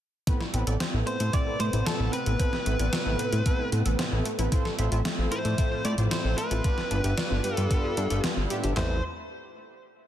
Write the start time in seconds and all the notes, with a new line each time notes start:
0.27 A2 C3 A3 B3 C4 E4 A4 B4, kick, closed hi-hat
0.40 E4, snare
0.54 A1 A2 B3 C4 E4 A4 B4, closed hi-hat
0.67 A1 A2 B3 C4 E4 A4 D5, closed hi-hat
0.80 C5, snare, closed hi-hat
0.94 A1 A2 B3 C4 E4 A4 B4
1.07 A3 C5 C6, closed hi-hat
1.20 A2 B3 C4 E4 A4 C5, closed hi-hat
1.33 A2 B3 C4 E4 A4 B4 D5 D6, kick, closed hi-hat
1.47 A4
1.60 A2 B3 C4 E4 A4 B4 C5 C6, closed hi-hat
1.73 A1 A2 B3 C4 E4 A4 B4, closed hi-hat
1.86 A3 A4 A5, snare, closed hi-hat
2.00 A1 A2 B3 C4 E4 A4 B4
2.13 C4 B4 B5, closed hi-hat
2.26 A1 A2 B3 C4 E4 A4 B4, closed hi-hat
2.40 A2 B3 C4 E4 A4 B4 C5, kick, closed hi-hat
2.53 E4, snare
2.66 A1 A2 A3 B3 C4 E4 A4 B4, closed hi-hat
2.79 A1 A2 B3 C4 E4 A4 D5, closed hi-hat
2.93 C4, snare, closed hi-hat
3.06 A1 A2 B3 C4 E4 A4 B4
3.19 C5, closed hi-hat
3.33 A2 B3 C4 E4 A4 C5, closed hi-hat
3.46 A2 A3 B3 C4 E4 A4 B4, kick, closed hi-hat
3.59 E4
3.72 A2 B3 C4 E4 A4 B4, closed hi-hat
3.86 A1 A2 B3 C4 E4 A4 B4, closed hi-hat
3.99 C5, snare, closed hi-hat
4.12 A1 A2 B3 C4 E4 A4 B4
4.25 A3, closed hi-hat
4.39 A1 B3 C4 E4 A4 B4, closed hi-hat
4.52 A2 F3 C4 E4 F4 A4 C5, kick, closed hi-hat
4.65 A4, snare
4.79 A1 A2 C4 E4 F4 A4 C5 E5, closed hi-hat
4.92 A1 A2 C4 E4 F4 A4 E5, closed hi-hat
5.05 A3, snare, closed hi-hat
5.18 A1 A2 C4 E4 F4 A4 C5
5.32 E4 C5 C6, closed hi-hat
5.45 A2 C4 E4 F4 A4 D5, closed hi-hat
5.58 A2 C4 E4 F4 A4 C5 E5, kick, closed hi-hat
5.71 F4
5.85 A2 A3 C4 E4 F4 A4 C5 D5 D6, closed hi-hat
5.98 A1 A2 C4 E4 F4 A4 C5, closed hi-hat
6.11 E4 C5 C6, snare, closed hi-hat
6.25 A1 A2 C4 E4 F4 A4 C5
6.38 B4 E5 B5, closed hi-hat
6.51 A1 C4 E4 F4 A4 C5, closed hi-hat
6.64 G2 G3 B3 D4 F4 G4 B4, kick, closed hi-hat
6.78 F4, snare
6.91 G1 G2 B3 D4 F4 G4 B4, closed hi-hat
7.04 G1 G2 B3 D4 F4 G4 E5, closed hi-hat
7.18 D5, snare, closed hi-hat
7.31 G1 G2 B3 D4 F4 G4 B4
7.44 G3, closed hi-hat
7.57 G2 B3 D4 F4 G4 A4 D5 A5, closed hi-hat
7.71 G2 B3 D4 F4 G4 B4, kick, closed hi-hat
7.84 G4
7.97 G2 B3 D4 F4 G4 E5, closed hi-hat
8.10 G1 G2 B3 D4 F4 G4 D5, closed hi-hat
8.24 G2 B3 D4 F4 G4 B4, snare, closed hi-hat
8.37 G1 F4
8.50 A2 B3 D4 F4 G4 E5, closed hi-hat
8.64 G1 G4, closed hi-hat
8.77 A1 A3 B3 C4 E4 A4 B4 C5 C6, snare, clap, floor tom